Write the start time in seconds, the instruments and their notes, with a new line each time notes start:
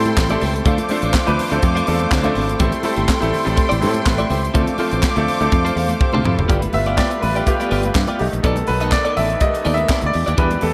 Already playing: fingered electric bass A2, grand piano G3 A3 C4 E4 A4 C5, string section A4 G5 C6
0.05 muted clean electric guitar stroke, closed hi-hat, high conga
0.17 fingered electric bass A1, muted clean electric guitar stroke, kick, snare, clap
0.29 grand piano G3 A3 C4 E4 A4, clean electric guitar C4 E4 G4 D5, closed hi-hat, muted conga, high conga
0.40 fingered electric bass C#2, clean electric guitar C4 E4 G4 C5, open hi-hat, low conga
0.55 muted clean electric guitar stroke, closed hi-hat
0.64 fingered electric bass D2, grand piano F3 A3 C4 D4 A4, clean electric guitar A3 D4 F4 C5, string section C5 F5 D6, kick, closed hi-hat, muted conga, low conga
0.78 muted clean electric guitar stroke, closed hi-hat, muted conga, high conga
0.89 grand piano F3 A3 C4 D4 A4, clean electric guitar A3 D4 F4 C5, open hi-hat, high conga
1.02 fingered electric bass A1, clean electric guitar A3 D4 F4 C5, closed hi-hat
1.14 kick, snare, clap, muted conga, high conga
1.25 fingered electric bass D2, grand piano F3 A3 C4 D4 B4, muted clean electric guitar stroke, closed hi-hat
1.39 open hi-hat, low conga
1.50 fingered electric bass D2, grand piano F3 A3 C4 D4 A4, muted clean electric guitar stroke, closed hi-hat
1.62 fingered electric bass F2, muted clean electric guitar stroke, kick, closed hi-hat, muted conga, high conga
1.75 clean electric guitar A3 D4 F4 C5, closed hi-hat, muted conga
1.87 fingered electric bass E2, grand piano F3 A3 C4 D4 A4, muted clean electric guitar stroke, open hi-hat
1.99 muted clean electric guitar stroke, closed hi-hat, high conga
2.11 fingered electric bass D2, muted clean electric guitar stroke, kick, snare, clap
2.23 grand piano F3 A3 C4 D4 A4, clean electric guitar A3 D4 F4 C5, closed hi-hat, muted conga, high conga
2.35 fingered electric bass G#1, clean electric guitar A3 D4 F4 C5, open hi-hat, low conga
2.48 muted clean electric guitar stroke, closed hi-hat
2.60 fingered electric bass A1, grand piano G3 A3 C4 E4 A4, clean electric guitar A3 E4 G4 C5, string section A4 G5 C6, kick, closed hi-hat, muted conga, low conga
2.72 muted clean electric guitar stroke, closed hi-hat, muted conga, high conga
2.83 grand piano G3 A3 C4 E4 A4, clean electric guitar A3 E4 G4 C5, open hi-hat, high conga
2.96 fingered electric bass G1, clean electric guitar A3 E4 G4 C5, closed hi-hat
3.08 muted clean electric guitar stroke, kick, snare, clap, muted conga, high conga
3.21 fingered electric bass A1, grand piano G3 A3 C4 E4 A4, muted clean electric guitar stroke, closed hi-hat, muted conga
3.34 open hi-hat, low conga
3.45 fingered electric bass A1, grand piano G3 A3 C4 E4 A4, muted clean electric guitar stroke, closed hi-hat
3.56 muted clean electric guitar stroke, kick, closed hi-hat, high conga
3.69 fingered electric bass A1, clean electric guitar A3 E4 G4 D5, closed hi-hat
3.81 fingered electric bass A2, grand piano G3 A3 C4 E4 A4, muted clean electric guitar stroke, open hi-hat
3.94 muted clean electric guitar stroke, closed hi-hat, high conga
4.05 fingered electric bass A1, grand piano B4 E5, muted clean electric guitar stroke, kick, snare, clap, muted conga
4.18 clean electric guitar A3 E4 G4 D5, closed hi-hat, high conga
4.30 fingered electric bass C#2, clean electric guitar A3 E4 G4 C5, grand piano G4 C5, open hi-hat, low conga
4.42 muted clean electric guitar stroke, closed hi-hat
4.54 fingered electric bass D2, grand piano F3 A3 C4 D4 A4, clean electric guitar C4 F4 A4 C5, string section C5 F5 D6, kick, closed hi-hat, muted conga, low conga
4.67 muted clean electric guitar stroke, closed hi-hat, muted conga, high conga
4.78 grand piano F3 A3 C4 D4 A4, clean electric guitar C4 F4 A4 C5, open hi-hat, high conga
4.91 fingered electric bass A1, clean electric guitar C4 F4 A4 C5, closed hi-hat
5.03 muted clean electric guitar stroke, kick, snare, clap, high conga
5.16 fingered electric bass D2, grand piano F3 A3 C4 D4 A4, muted clean electric guitar stroke, closed hi-hat
5.28 open hi-hat, low conga
5.40 fingered electric bass D2, grand piano F3 A3 C4 D4 A4, muted clean electric guitar stroke, closed hi-hat
5.52 fingered electric bass F2, muted clean electric guitar stroke, kick, closed hi-hat, muted conga, high conga
5.65 clean electric guitar C4 F4 A4 C5, closed hi-hat
5.76 fingered electric bass E2, grand piano C5 F5, muted clean electric guitar stroke, open hi-hat
5.89 muted clean electric guitar stroke, closed hi-hat, high conga
6.00 grand piano G4 C5, muted clean electric guitar stroke, kick, high tom, muted conga
6.13 fingered electric bass D2, clean electric guitar C4 F4 A4 C5, mid tom, high conga
6.24 fingered electric bass F2, clean electric guitar C4 F4 A4 C5, grand piano E4 A4, mid tom, low conga
6.37 fingered electric bass F#1, muted clean electric guitar stroke, floor tom
6.48 fingered electric bass G1, string section G3 F4 B4, clean electric guitar B3 F4 G4 D5, kick, closed hi-hat, muted conga, low conga
6.62 muted clean electric guitar stroke, closed hi-hat, muted conga, high conga
6.73 fingered electric bass G1, grand piano A3 B3 F4 E5, muted clean electric guitar stroke, open hi-hat, high conga
6.86 clean electric guitar B3 F4 G4 D5, closed hi-hat
6.97 clean electric guitar B3 F4 G4 E5, grand piano D5, kick, snare, clap, muted conga, high conga
7.11 muted clean electric guitar stroke, closed hi-hat
7.22 fingered electric bass A1, grand piano B4, muted clean electric guitar stroke, open hi-hat, low conga
7.35 clean electric guitar B3 F4 G4 D5, closed hi-hat
7.46 grand piano A3 B3 F4 G4, muted clean electric guitar stroke, kick, closed hi-hat, muted conga, high conga
7.60 clean electric guitar B3 F4 G4 D5, closed hi-hat, muted conga
7.71 fingered electric bass G1, clean electric guitar B3 F4 G4 D5, open hi-hat
7.83 muted clean electric guitar stroke, closed hi-hat, high conga
7.95 fingered electric bass G2, muted clean electric guitar stroke, kick, snare, clap, muted conga
8.07 clean electric guitar B3 F4 G4 D5, closed hi-hat, muted conga, high conga
8.19 fingered electric bass B1, string section D#3 A3 B3, grand piano G3 A3 D#4 G4, open hi-hat
8.33 fingered electric bass A#1, muted clean electric guitar stroke, closed hi-hat
8.43 fingered electric bass B1, clean electric guitar B3 D#4 A4 D5, grand piano A4, kick, closed hi-hat, muted conga, low conga
8.56 muted clean electric guitar stroke, closed hi-hat, muted conga, high conga
8.67 fingered electric bass B1, grand piano B4, muted clean electric guitar stroke, open hi-hat, high conga
8.80 clean electric guitar B3 D#4 A4 D#5, closed hi-hat
8.92 grand piano D5, muted clean electric guitar stroke, kick, snare, clap, muted conga, high conga
9.05 clean electric guitar B3 D#4 A4 D5, closed hi-hat, muted conga
9.16 fingered electric bass A1, clean electric guitar B3 D#4 A4 D5, grand piano E5, open hi-hat, low conga
9.30 muted clean electric guitar stroke, closed hi-hat
9.40 grand piano G3 A3 D#4 D#5, kick, closed hi-hat, muted conga, high conga
9.54 muted clean electric guitar stroke, closed hi-hat
9.65 fingered electric bass D#2, clean electric guitar B3 D#4 A4 D5, open hi-hat
9.74 grand piano E5, closed hi-hat
9.78 muted clean electric guitar stroke, high conga
9.89 clean electric guitar B3 D#4 A4 D5, kick, snare, clap
10.01 fingered electric bass D2, muted clean electric guitar stroke, closed hi-hat, high conga
10.06 grand piano D5
10.13 fingered electric bass E2, string section E3 D4 G4, muted clean electric guitar stroke, open hi-hat
10.26 fingered electric bass D#2, clean electric guitar D4 G4 B4 D5, closed hi-hat
10.37 fingered electric bass E2, grand piano G3 B3 D4 B4, clean electric guitar D4 G4 B4 D5, kick, closed hi-hat, low conga
10.50 muted clean electric guitar stroke, closed hi-hat, muted conga, high conga
10.61 fingered electric bass E2, grand piano A4, muted clean electric guitar stroke, open hi-hat, high conga